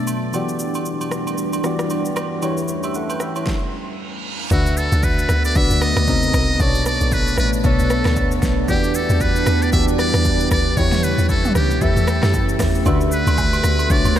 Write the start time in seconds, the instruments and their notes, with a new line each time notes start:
Already playing: ambient pad B2 F#3 A3 D4, synth keys B2 B3 D4 A4 D5 E5
0.07 high agogo, shaker
0.33 ambient pad E2 E3 G3, synth keys E3 B3 F#4 G4 D5, high agogo, shaker
0.49 shaker
0.59 shaker
0.75 high agogo, shaker
0.86 shaker
1.01 high agogo, shaker
1.11 cross-stick, shaker
1.27 high agogo, shaker
1.38 shaker
1.53 high agogo, shaker
1.64 synth keys E3 B3 F#4 G4 D5, cross-stick, shaker
1.79 cross-stick, shaker
1.90 high agogo, shaker
2.05 shaker
2.16 cross-stick, high agogo, shaker
2.42 synth keys E3 E4 G4 B4 C#5, high agogo, shaker
2.57 shaker
2.68 synth keys E4 C#5, shaker
2.83 synth keys G4 E5, high agogo, shaker
2.94 synth keys A4 F#5, shaker
3.10 synth keys B4 G5, high agogo, shaker
3.20 synth keys G4 E5, cross-stick, shaker
3.36 synth keys E4 C#5, high agogo, shaker
3.47 kick, snare, reverse cymbal
4.51 log drum bass D2, ambient pad D3 A3 B3 F#4, synth keys D3 D4 F#4 B4 E5, muted trumpet F#4, kick, shaker
4.66 shaker
4.77 muted trumpet A4, shaker
4.92 log drum bass D2, shaker
5.03 muted trumpet B4, kick, shaker
5.19 shaker
5.29 log drum bass D2, cross-stick, shaker
5.45 muted trumpet D5, shaker
5.55 log drum bass B1, synth keys D3 D4 F#4 B4 D5, muted trumpet E5, kick, shaker
5.71 log drum bass D2, shaker
5.82 muted trumpet D#5, cross-stick, shaker
5.97 log drum bass D2, cross-stick, shaker
6.07 synth keys C3 C4 D#4 A#4 D#5, kick, shaker
6.23 shaker
6.33 log drum bass C2, kick, cross-stick, shaker
6.60 log drum bass B1, synth keys B2 B3 C#4 A4 C#5, ambient pad A3 B3 D4, muted trumpet D5, kick, shaker
6.67 synth keys D4
6.75 shaker
6.86 muted trumpet D5, cross-stick, shaker
7.01 log drum bass B1, shaker
7.12 muted trumpet B4, kick, shaker
7.27 shaker
7.38 log drum bass A1, muted trumpet B4, cross-stick, shaker
7.53 shaker
7.64 log drum bass B1, synth keys B2 B3 D4 A4 C#5, muted trumpet A4, kick, shaker
7.79 log drum bass B1, shaker
7.90 cross-stick, shaker
8.05 log drum bass D2, cross-stick, snare, shaker
8.16 kick, shaker
8.32 shaker
8.42 log drum bass B1, kick, snare, shaker
8.69 log drum bass E2, synth keys E3 B3 F#4 G4 D5, ambient pad E3 G3, muted trumpet G4, kick, shaker
8.84 shaker
8.95 muted trumpet A4, shaker
9.10 log drum bass E2, shaker
9.20 muted trumpet B4, kick, shaker
9.36 shaker
9.46 log drum bass E2, cross-stick, shaker
9.62 muted trumpet D5, shaker
9.73 log drum bass D2, synth keys E3 B3 F#4 G4 D5, muted trumpet E5, kick, shaker
9.88 log drum bass E2, shaker
9.99 muted trumpet D5, cross-stick, shaker
10.14 log drum bass E2, cross-stick, shaker
10.25 kick, shaker
10.40 shaker
10.51 log drum bass D2, muted trumpet D5, kick, cross-stick, shaker
10.77 log drum bass E2, synth keys E3 E4 G4 B4 C#5, ambient pad A3 C#4 G4, muted trumpet C#5, kick, shaker
10.92 snare, mid tom, shaker
11.03 muted trumpet B4, shaker
11.18 log drum bass E2, shaker
11.29 muted trumpet A4, kick, shaker
11.45 mid tom, shaker
11.55 log drum bass C#2, muted trumpet G4, cross-stick, shaker
11.71 shaker
11.81 log drum bass E2, synth keys E3 E4 G4 B4 E5, muted trumpet A4, kick, shaker
11.96 log drum bass E2, shaker
12.08 cross-stick, shaker
12.23 log drum bass F#2, cross-stick, snare, shaker
12.34 kick, shaker
12.49 shaker
12.60 log drum bass E2, kick, cross-stick, snare, open hi-hat, shaker
12.75 shaker
12.86 log drum bass D2, synth keys D3 D4 F#4 B4 E5, ambient pad D3 A3 B3 F#4, kick, high agogo, shaker
13.01 shaker
13.12 muted trumpet B4, shaker
13.27 log drum bass D2, high agogo, shaker
13.38 kick, low woodblock, shaker
13.53 high agogo, shaker
13.64 log drum bass D2, cross-stick, shaker
13.79 high agogo, shaker
13.90 log drum bass B1, synth keys D3 D4 F#4 B4 C#5, muted trumpet D5, kick, shaker
14.05 log drum bass D2, high agogo, shaker
14.16 cross-stick, shaker